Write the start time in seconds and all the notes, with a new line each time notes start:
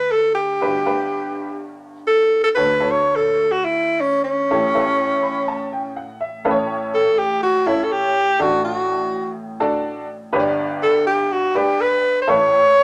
Already playing: D2 D3 B4
0.11 A4
0.35 G4
0.61 G1 G2 D4 F#4 G4 B4
0.86 D4 G4 B4 F#5
2.08 A4
2.44 A4
2.55 D2 D3 D4 F#4 A4 B4 C#5
2.80 D4 F#4 A4 C#5
2.91 C#5
3.16 A4
3.52 F#4
3.64 E4
4.01 C#4
4.24 C#4
4.51 A1 A2 E4 G4 A4 C#5
4.74 E4 G4 A4 B4
4.81 C#5
5.23 B5
5.48 A5
5.73 G5
5.96 F#5
6.21 E5
6.45 A1 A2 C#4 E4 A4 B4
6.51 C#5
6.94 A4
7.19 G4
7.43 F#4
7.66 C#4 E4 A4 C#5
7.84 A4
7.92 G4
8.39 A1 A2 D4 F#4 A4 D5
8.65 F#4
9.60 D4 F#4 A4 D5
10.32 G1 G2 D4 G4 B4 C#5
10.39 D5
10.83 A4
11.07 G4
11.32 F#4
11.55 D4 G4 B4 D5
11.81 B4
12.22 C5
12.28 A1 A2 E4 A4 B4 C#5